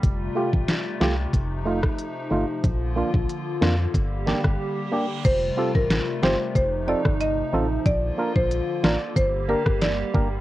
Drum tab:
CC |----------------|----------------|x---------------|----------------|
HH |x---x---x---x---|x---x---x-------|x---x---x---x---|x---x---x---x---|
SD |----o-o----r----|------o---or----|----o-o----r----|------o----ro---|
BD |o--o----o--o----|o--o----o--o----|o--o----o--o----|o--o----o--o--o-|